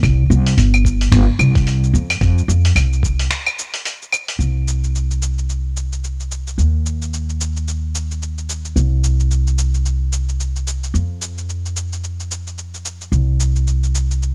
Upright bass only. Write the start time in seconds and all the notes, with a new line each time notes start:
0.03 C2
0.30 C2
0.57 G1
1.12 G1
1.39 C2
1.94 F2
2.21 F2
2.48 F2
2.76 C2
4.39 C2
6.58 D#2
8.76 C2
10.94 F2
13.12 C2